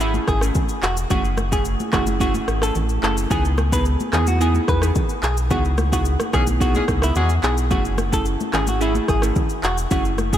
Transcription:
Already playing: G#1
0.00 A3 C#4 E4 G#4, shaker
0.14 high conga, shaker
0.28 G#1 G#4, kick, cross-stick, shaker
0.41 A3 C#4 E4 G#4, cross-stick, shaker
0.55 kick, low conga, shaker
0.69 shaker
0.83 E1 F#4, clap, shaker
0.97 shaker
1.10 F#1 A3 C#4 E4 F#4 G#4, kick, low conga, shaker
1.24 shaker
1.37 cross-stick, high conga, shaker
1.52 A3 C#4 E4 G#4, kick, shaker
1.65 shaker
1.80 high conga, shaker
1.93 F#1 A3 C#4 E4 F#4 G#4, kick, cross-stick, clap, low conga, shaker
2.07 high conga, shaker
2.20 A3 C#4 E4 F#4 G#4, kick, shaker
2.34 high conga, shaker
2.48 G#1, cross-stick, shaker
2.62 A3 C#4 E4 G#4 A4, cross-stick, shaker
2.75 A1, low conga, shaker
2.89 shaker
3.03 F#1 A3 C#4 E4 G#4 A4, clap, shaker
3.17 shaker
3.30 C#2 B3 D#4 E4 G#4, kick, low conga, shaker
3.45 shaker
3.58 cross-stick, high conga, shaker
3.72 B3 D#4 E4 G#4 B4, kick, shaker
3.85 shaker
4.00 high conga, shaker
4.13 E2 B3 D#4 E4 G#4, cross-stick, clap, low conga, shaker
4.27 F#4, high conga, shaker
4.40 B3 D#4 E4 G#4, shaker
4.54 high conga, shaker
4.68 E2 B4, kick, cross-stick, shaker
4.82 B3 D#4 E4 G#4, cross-stick, shaker
4.95 kick, low conga, shaker
5.09 shaker
5.23 B1 G#4, clap, shaker
5.37 shaker
5.50 C#2 B3 D#4 E4 F#4 G#4, kick, low conga, shaker
5.65 shaker
5.78 cross-stick, high conga, shaker
5.92 B3 D#4 E4 F#4 G#4, kick, shaker
6.05 shaker
6.20 cross-stick, high conga, shaker
6.33 B1 E3 G#3 B3 C#4 D#4 E4 G#4, kick, cross-stick, low conga, shaker
6.47 high conga, shaker
6.60 B3 D#4 E4 F#4 G#4, kick, shaker
6.75 E3 G#3 C#4 G#4, high conga, shaker
6.88 C#2, kick, cross-stick, shaker
7.02 B3 D#4 E4 G#4, cross-stick, shaker
7.15 E2 E3 G#3 C#4 F#4 G#4, low conga, shaker
7.29 shaker
7.43 B1 B3 D#4 E4 G#4, clap, shaker
7.58 shaker
7.71 F#1 A3 C#4 E4 F#4 G#4, kick, low conga, shaker
7.85 shaker
7.98 cross-stick, high conga, shaker
8.12 A3 C#4 E4 G#4 A4, kick, shaker
8.25 shaker
8.40 high conga, shaker
8.53 G#1 A3 C#4 E4 G#4, cross-stick, clap, low conga, shaker
8.67 F#4, high conga, shaker
8.81 A3 C#4 E4 G#4, shaker
8.95 high conga, shaker
9.08 G#1 G#4, kick, cross-stick, shaker
9.22 A3 C#4 E4 G#4, cross-stick, shaker
9.36 kick, low conga, shaker
9.50 shaker
9.63 E1 F#4, clap, shaker
9.78 shaker
9.91 F#1 A3 C#4 E4 F#4 G#4, kick, low conga, shaker
10.05 shaker
10.18 cross-stick, high conga, shaker
10.33 A3 C#4 E4 G#4, kick, shaker

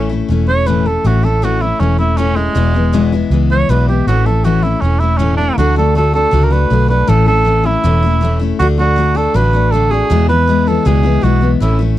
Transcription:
Already playing: A1 E3 A3 C#4
0.09 A3 C#4 E4
0.28 E1 E3 A3 C#4 E4
0.47 A3 C#4 E4 C#5
0.66 A2 E3 A3 C#4 E4 B4
0.86 A3 C#4 E4 A4
1.04 A1 A2 E3 A3 C#4 E4 F#4
1.23 A3 C#4 E4 A4
1.42 A2 E3 A3 C#4 E4 F#4
1.60 A3 C#4 E4
1.80 E1 E3 A3 C#4 E4
1.98 A3 C#4 E4
2.17 A2 E3 A3 C#4 E4
2.36 G#3 A3 C#4 E4
2.55 E1 E2 B2 E3 G#3 B3 E4
2.74 E3 G#3 B3 E4
2.93 E2 B2 E3 G#3 B3 E4
3.12 E3 G#3 B3 E4
3.30 C#2 E3 G#3 B3 E4
3.50 E3 G#3 B3 E4 C#5
3.69 B1 E2 B2 E3 G#3 B3 E4 B4
3.88 E3 G#3 B3 E4 G4
4.07 A1 A2 E3 A3 C#4 E4 F#4
4.26 A3 C#4 E4 A4
4.44 A2 E3 A3 C#4 E4 F#4
4.63 A3 C#4 E4
4.81 E1 E3 A3 C#4 E4
5.00 C#4 E4
5.04 A3
5.17 A2 E3 A3 C#4
5.21 E4
5.37 C#4 D4 E4
5.41 A3
5.58 D2 D3 A3 D4 F#4
5.76 A3 D4 F#4 A4
5.95 D3 A3 D4 F#4 A4
6.13 A3 D4 F#4 A4
6.31 C#2 D3 A3 D4 F#4
6.44 A#4
6.50 A3 D4 F#4 B4
6.70 B1 D3 A3 D4 F#4
6.88 A3 D4 F#4 B4
7.07 A1 A2 E3 A3 C#4 E4 A4
7.26 A3 C#4 E4 A4
7.45 E3 A3 C#4 E4
7.64 A3 C#4 E4
7.84 E1 A2 E3 A3 C#4 E4
8.03 A3 C#4 E4
8.21 E3 A3 C#4 E4
8.39 A3 C#4 E4
8.59 D2 D3 A3 D4 F#4
8.78 A3 D4 F#4
8.96 D3 A3 D4 F#4
9.15 A3 D4 F#4 A4
9.34 A1 D3 A3 D4 F#4 B4
9.53 A3 D4 F#4
9.71 D3 A3 D4 A4
9.76 F#4
9.91 A3 D4 F#4 G#4
10.10 E2 B2 E3 G#3 B3 E4
10.29 E3 G#3 B3 E4 B4
10.47 E3 G#3 B3 E4
10.67 E3 G#3 B3 E4 A4
10.85 C#2 E2 B2 E3 G#3 B3 E4 G#4
11.03 E3 G#3 B3 E4
11.22 B1 E3 G#3 B3 E4 F#4
11.41 E3 G#3 B3 E4
11.60 A1 A2 E3 A3 C#4 E4
11.79 A3 C#4 E4

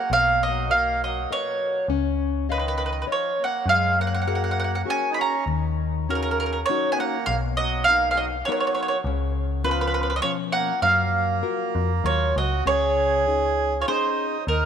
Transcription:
Already playing: A#3 F#5
0.10 B1 B2 F5
0.14 A#3
0.43 F#3 D#5
0.70 A#3 F#4 A#4 D#5 F5
1.04 F#3 D#5
1.31 F#3 A#4 B4 C#5 D#5
1.88 C#2 C#4
2.49 D#3 B4 C#5 D#5 F5
2.59 B4
2.68 B4
2.78 B4
2.86 B4
2.93 B4
3.02 B4
3.07 F3 C#5 D#5
3.12 C#5
3.40 A#3 F#5
3.66 F#2 F#3 G#3 F5
3.98 A#3 F#5
4.07 F#5
4.14 F#5
4.22 F#5
4.27 F#4 G#4 A#4 F#5
4.35 F#5
4.44 F#5
4.51 F#5
4.60 F#5
4.64 F#5
4.75 F#5
4.85 C#4 F#4 G#4 A#4
4.90 G#5
5.10 D#4
5.14 C#4 B5
5.21 A#5
5.46 D#2 D#3
6.08 C#3 C#4 D#4 F#4 A#4
6.15 A#4
6.22 A#4
6.31 A#4
6.40 A#4
6.46 A#4
6.53 A#4
6.66 F#3 C#4 C#5
6.70 D#4 F#4
6.92 B3 G#5
6.99 A#3 F#5
7.26 B1 B2 A#3 F5
7.57 F#3 D#5
7.83 A#3 F5
7.88 B3 D#4 A#4
8.11 G#3 F5
8.16 F#3 D#5
8.45 F#3 B3 D#4 C#5
8.49 A#4 C#5
8.60 C#5
8.67 C#5
8.75 C#5
8.83 C#5
8.88 C#5
9.04 C#2 C#3
9.64 F3 B3 C#4 F4 B4
9.71 B4
9.81 B4
9.87 B4
9.94 B4
10.03 B4
10.10 B4
10.16 F#3 D#5
10.22 B2 F3 C#4 C#5
10.52 A#3 F#5
10.82 F#2 F#3 A#3 F5
11.43 F4 F#4 A#4
11.75 F2
12.04 D#2 F#3 F4 A#4 C#5 F5
12.36 C#2 F#4 D#5
12.66 C#2 C#3 G#4 C#5
13.26 C#4 D#4 G#4
13.81 F4 C#5
13.88 C#4 D#4 G#4 C5
14.47 D#2 D#3 D#4 A#4

